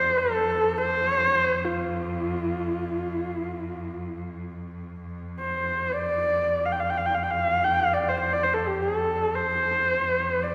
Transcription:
0.00 5.02 F2 medium
0.00 0.19 C5 medium
0.17 0.79 A4 medium
0.78 1.66 C5 loud
1.64 4.21 F4 medium
5.03 10.05 F2 medium
5.40 5.93 C5 medium
5.92 6.67 D5 medium
6.66 6.74 F5 medium
6.72 6.82 G5 medium
6.80 6.92 F5 medium
6.90 6.99 G5 medium
6.98 7.08 F5 medium
7.06 7.16 G5 medium
7.15 7.25 F5 medium
7.23 7.33 G5 medium
7.31 7.66 F5 medium
7.64 7.81 G5 medium
7.80 7.95 F5 medium
7.94 8.10 D5 medium
8.09 8.20 C5 medium
8.20 8.35 C5 medium
8.33 8.44 D5 medium
8.43 8.55 C5 medium
8.54 8.69 A4 medium
8.67 8.83 G4 medium
8.82 9.36 A4 medium
9.35 10.45 C5 medium
10.05 10.55 F2 medium
10.43 10.55 D5 medium

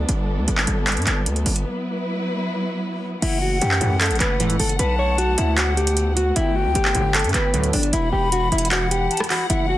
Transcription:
0.00 3.18 B3 medium
0.00 1.62 D4 medium
0.09 0.40 G1 loud
0.09 1.64 G3 medium
0.09 1.64 A4 medium
0.09 closed hi-hat medium
0.38 0.47 D2 loud
0.48 0.67 G1 loud
0.48 closed hi-hat medium
0.58 clap medium
0.67 0.98 G1 loud
0.67 closed hi-hat medium
0.87 clap loud
0.87 closed hi-hat medium
0.92 closed hi-hat medium
0.97 1.06 G2 medium
0.97 closed hi-hat soft
1.02 closed hi-hat soft
1.07 1.28 G1 loud
1.07 clap medium
1.07 closed hi-hat medium
1.26 1.45 D2 loud
1.26 closed hi-hat medium
1.36 closed hi-hat soft
1.46 1.65 G1 loud
1.46 closed hi-hat medium
1.46 open hi-hat medium
1.56 closed hi-hat medium
1.65 3.21 F#3 medium
1.65 3.21 E4 medium
1.65 3.21 B4 medium
3.22 3.60 F#1 loud
3.22 4.78 E3 medium
3.22 4.78 A3 medium
3.22 4.78 C#4 medium
3.22 3.40 E4 loud
3.22 6.33 F#5 medium
3.22 4.36 F#5 loud
3.22 closed hi-hat medium
3.22 crash loud
3.42 3.60 F#4 medium
3.61 3.80 F#2 loud
3.61 3.98 G4 medium
3.61 closed hi-hat medium
3.71 clap medium
3.81 3.90 C#2 loud
3.81 4.12 F#2 loud
3.81 3.90 A2 medium
3.81 3.90 E3 loud
3.81 closed hi-hat medium
4.01 4.19 A4 medium
4.01 clap loud
4.01 closed hi-hat medium
4.06 closed hi-hat medium
4.10 4.20 A1 loud
4.10 closed hi-hat soft
4.15 closed hi-hat soft
4.20 4.58 F#1 loud
4.20 4.57 B4 medium
4.20 clap medium
4.20 closed hi-hat medium
4.40 4.57 C#2 loud
4.40 4.57 A2 loud
4.40 4.57 E3 loud
4.40 closed hi-hat medium
4.50 closed hi-hat soft
4.60 4.78 F#1 loud
4.60 4.77 A4 medium
4.60 closed hi-hat medium
4.60 open hi-hat medium
4.69 closed hi-hat medium
4.79 5.36 B1 loud
4.79 6.35 D3 medium
4.79 7.90 A3 medium
4.79 9.46 B3 medium
4.79 4.97 B4 medium
4.79 5.54 A5 loud
4.79 closed hi-hat medium
4.99 5.17 C#5 medium
5.18 5.36 F#4 loud
5.18 closed hi-hat medium
5.38 6.32 D2 loud
5.38 5.56 E4 medium
5.38 closed hi-hat medium
5.57 5.75 F#4 medium
5.57 5.95 F#5 medium
5.57 clap loud
5.57 closed hi-hat medium
5.77 6.14 G4 medium
5.77 closed hi-hat medium
5.87 closed hi-hat medium
5.97 closed hi-hat medium
6.16 6.34 F#4 medium
6.16 closed hi-hat medium
6.36 6.67 G1 loud
6.36 7.91 D3 medium
6.36 6.54 E4 loud
6.36 7.91 G4 medium
6.36 7.50 G5 loud
6.36 closed hi-hat medium
6.56 6.74 F#4 medium
6.65 6.75 D2 loud
6.75 6.94 G1 loud
6.75 7.12 G4 medium
6.75 closed hi-hat medium
6.85 clap medium
6.95 7.26 G1 loud
6.95 7.03 B1 loud
6.95 7.03 A2 loud
6.95 7.03 D3 loud
6.95 closed hi-hat medium
7.14 7.32 A4 medium
7.14 clap loud
7.14 closed hi-hat medium
7.19 closed hi-hat medium
7.24 7.34 G2 loud
7.24 closed hi-hat soft
7.29 closed hi-hat soft
7.34 7.55 G1 loud
7.34 7.71 B4 medium
7.34 clap medium
7.34 closed hi-hat medium
7.54 7.70 B1 loud
7.54 7.72 D2 loud
7.54 7.70 A2 loud
7.54 7.70 D3 loud
7.54 closed hi-hat medium
7.63 closed hi-hat medium
7.73 7.92 G1 loud
7.73 7.91 D4 medium
7.73 closed hi-hat medium
7.73 open hi-hat medium
7.83 closed hi-hat medium
7.93 8.12 E1 loud
7.93 9.78 E3 medium
7.93 8.11 E4 medium
7.93 9.78 F#5 medium
7.93 8.67 B5 loud
7.93 closed hi-hat medium
8.12 8.50 E1 loud
8.12 8.30 G4 medium
8.32 8.50 F#4 medium
8.32 closed hi-hat medium
8.52 9.08 E1 loud
8.52 8.70 E4 medium
8.52 closed hi-hat medium
8.58 closed hi-hat medium
8.65 closed hi-hat medium
8.71 8.89 F#4 medium
8.71 9.08 F#5 medium
8.71 clap loud
8.71 closed hi-hat medium
8.91 9.28 G4 medium
8.91 closed hi-hat medium
9.11 9.29 A5 medium
9.11 closed hi-hat medium
9.17 cross-stick loud
9.17 closed hi-hat medium
9.24 closed hi-hat medium
9.30 9.48 F#4 medium
9.30 9.49 B5 medium
9.30 clap medium
9.30 open hi-hat medium
9.50 9.78 F#1 loud
9.50 9.78 A3 medium
9.50 9.78 C#4 medium
9.50 9.68 E4 loud
9.50 9.78 F#5 loud
9.50 closed hi-hat medium
9.69 9.78 F#4 medium

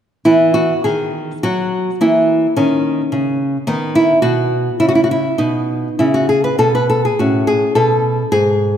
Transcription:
0.25 0.72 E3 medium
0.25 1.97 B3 soft
0.25 0.53 E4 medium
0.54 0.82 F#4 medium
0.84 1.32 D#3 medium
0.84 1.41 G#4 medium
1.43 1.89 F#3 medium
1.43 1.98 F#4 medium
2.01 2.46 E3 medium
2.01 3.63 A#3 soft
2.01 2.55 E4 medium
2.56 3.01 D#3 medium
2.56 3.63 C#4 medium
3.12 3.56 C#3 medium
3.67 4.12 D#3 medium
3.67 4.76 B3 soft
3.67 3.94 D#4 medium
3.95 4.22 E4 medium
4.22 4.68 B2 medium
4.22 4.77 F#4 medium
4.80 5.28 C#3 medium
4.80 4.88 E4 medium
4.89 4.95 F#4 medium
4.95 5.03 E4 medium
5.04 5.11 F#4 medium
5.11 5.38 E4 medium
5.38 5.87 B2 soft
5.38 7.15 B3 soft
5.38 5.97 D#4 medium
5.99 6.48 C#3 soft
5.99 6.14 E4 medium
6.14 6.29 F#4 medium
6.29 6.44 G#4 medium
6.44 6.58 B4 medium
6.58 7.07 B2 soft
6.58 6.74 A4 medium
6.75 6.89 B4 medium
6.90 7.05 A4 medium
7.05 7.19 G#4 medium
7.19 7.65 A2 medium
7.19 8.77 C#4 soft
7.19 7.46 F#4 medium
7.47 7.74 G#4 medium
7.75 8.21 B2 soft
7.75 8.30 A4 medium
8.32 8.77 G#2 medium
8.32 8.77 G#4 medium

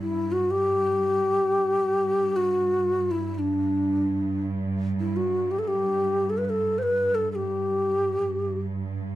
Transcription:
0.00 1.87 G2 medium
0.00 0.34 E4 medium
0.32 0.52 F#4 medium
0.51 2.38 G4 medium
1.88 8.26 G2 medium
2.36 3.13 F#4 medium
3.11 3.35 E4 medium
3.35 3.40 E4 medium
3.39 4.44 D4 medium
5.00 5.18 E4 medium
5.16 5.53 F#4 medium
5.51 5.60 G4 medium
5.59 5.64 A4 medium
5.64 6.31 G4 medium
5.64 5.69 A4 medium
6.30 6.39 A4 medium
6.38 6.45 B4 medium
6.45 6.50 B4 medium
6.49 6.80 A4 medium
6.78 6.84 C5 medium
6.83 7.16 B4 medium
7.15 7.31 A4 medium
7.32 8.57 G4 medium
7.32 7.36 A4 medium
8.27 9.15 G2 medium

